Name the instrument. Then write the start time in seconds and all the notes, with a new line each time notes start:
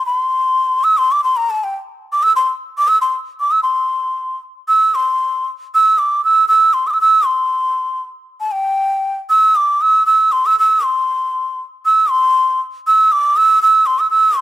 bansuri
0.06 B5
0.17 C6
0.84 E6
0.98 C6
1.12 D6
1.24 C6
1.37 A#5
1.50 A5
1.64 G5
2.12 D6
2.23 E6
2.36 C6
2.78 D6
2.88 E6
3.01 C6
3.40 D6
3.51 E6
3.63 C6
4.68 E6
4.95 C6
5.75 E6
5.98 D6
6.25 E6
6.48 E6
6.74 C6
6.87 D6 E6
6.94 E6
7.01 E6
7.26 C6
8.40 A5
8.52 G5
9.30 E6
9.56 D6
9.81 E6
10.06 E6
10.32 C6
10.46 E6
10.59 E6
10.84 C6
11.85 E6
12.10 C6
12.87 E6
13.12 D6
13.37 E6
13.62 E6
13.86 C6
13.99 E6
14.10 E6
14.37 C6